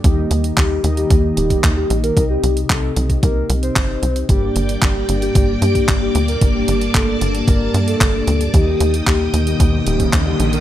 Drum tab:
HH |x-xxx-xxx-xxx-xx|x-xxx-xxx-xxx-xx|x-xxx-xxx-xxx-xx|x-xxx-xxx-xxx-xx|
CP |----x-------x---|----x-------x---|----x-------x---|----x-------x---|
BD |o---o---o--oo---|o---o--oo---o---|o---o---o--oo---|o---o---o---o---|

HH |x-xxx-xxx-xxx-xx|
CP |----x-------x---|
BD |o---o---o--oo---|